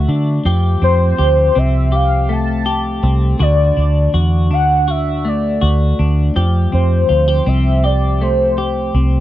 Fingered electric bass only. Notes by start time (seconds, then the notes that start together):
0.08 D3
0.45 F2
0.82 F2
1.19 D2
1.56 C2
3.03 C2
3.40 D2
3.77 D2
4.14 E2
4.51 D2
5.62 D2
5.99 D2
6.36 F2
6.73 F2
7.10 D2
7.47 C2
8.94 C2